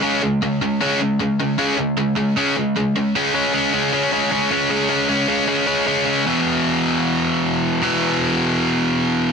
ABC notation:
X:1
M:4/4
L:1/8
Q:1/4=154
K:Db
V:1 name="Overdriven electric guitar" clef=bass
[D,A,D] [D,A,] [D,A,] [D,A,] [D,A,D] [D,A,] [D,A,] [D,A,] | [D,A,D] [D,A,] [D,A,] [D,A,] [D,A,D] [D,A,] [D,A,] [D,A,] | [D,A,D] [D,A,D] [D,A,D] [D,A,D] [D,A,D] [D,A,D] [D,A,D] [D,A,D] | [D,A,D] [D,A,D] [D,A,D] [D,A,D] [D,A,D] [D,A,D] [D,A,D] [D,A,D] |
[=E,,=B,,=E,]8 | [=E,,=B,,=E,]8 |]